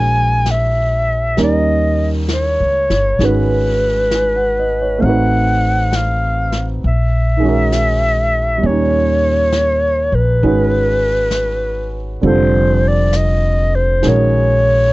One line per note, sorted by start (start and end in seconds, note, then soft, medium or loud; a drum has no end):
0.00 1.33 A#1 medium
0.00 1.34 D#3 soft
0.00 1.36 G#3 soft
0.00 1.36 C#4 soft
0.00 1.38 F#4 soft
0.00 1.37 A#4 soft
0.00 0.52 G#5 medium
0.46 snare soft
0.46 hi-hat pedal soft
0.51 1.40 E5 medium
1.37 2.56 D#2 medium
1.37 3.20 G3 soft
1.37 3.20 A#3 soft
1.37 3.20 C#4 soft
1.37 3.21 D#4 soft
1.37 3.21 A#4 soft
1.37 brush sweep soft
1.37 snare soft
1.43 2.09 D#5 medium
2.28 snare soft
2.28 hi-hat pedal soft
2.33 3.27 C#5 medium
2.60 2.88 C#2 soft
2.90 3.18 G1 medium
2.90 snare soft
3.19 4.98 G#1 medium
3.19 5.02 D#3 soft
3.19 5.03 G#3 soft
3.19 5.03 C#4 soft
3.19 5.04 F#4 soft
3.19 brush sweep soft
3.19 snare soft
3.24 5.04 B4 soft
3.24 5.03 B4 medium
4.11 4.55 G#5 soft
4.11 snare soft
4.11 hi-hat pedal soft
4.36 4.74 F#5 soft
4.59 4.87 D#5 soft
4.82 5.12 C#5 soft
4.98 6.79 A1 medium
4.98 6.81 A3 soft
4.98 6.83 C4 soft
4.98 5.07 F5 medium
4.98 brush sweep soft
5.04 6.84 D#4 soft
5.04 6.85 F#4 soft
5.04 5.97 F#5 medium
5.09 6.87 B4 soft
5.92 6.67 F5 medium
5.92 snare soft
5.92 hi-hat pedal soft
6.52 snare soft
6.82 8.60 A#1 medium
6.82 brush sweep soft
6.87 8.68 E5 medium
7.37 8.61 D#3 soft
7.37 8.62 G#3 soft
7.43 8.62 C#4 soft
7.43 8.65 F#4 soft
7.49 8.67 A#4 medium
7.72 snare soft
7.72 hi-hat pedal soft
8.58 10.42 A#2 soft
8.58 10.41 G3 soft
8.63 10.09 D#2 medium
8.63 10.42 C#4 soft
8.63 10.45 D#4 soft
8.63 10.16 C#5 medium
8.63 brush sweep soft
8.69 10.46 G4 soft
9.52 snare soft
9.52 hi-hat pedal soft
10.12 10.41 A#1 medium
10.12 12.06 B4 medium
10.42 12.19 G#1 medium
10.42 12.23 D#3 soft
10.42 12.24 G#3 soft
10.42 12.24 C#4 soft
10.42 12.24 F#4 soft
10.42 12.24 B4 medium
10.42 brush sweep soft
11.31 snare soft
11.31 hi-hat pedal soft
12.20 14.00 F1 medium
12.20 14.03 D3 soft
12.20 14.04 G3 soft
12.20 14.04 C4 soft
12.20 brush sweep soft
12.25 14.05 F4 soft
12.25 14.06 A4 medium
12.25 12.90 C5 medium
12.88 13.18 D5 medium
13.13 13.77 D#5 medium
13.13 snare soft
13.13 hi-hat pedal soft
13.76 14.10 C5 medium
14.01 14.93 D#3 soft
14.01 14.93 G#3 soft
14.01 14.93 C#4 soft
14.01 14.93 F#4 soft
14.01 brush sweep soft
14.01 snare soft
14.05 14.93 A#1 medium
14.05 14.93 A#4 soft
14.05 14.93 C#5 medium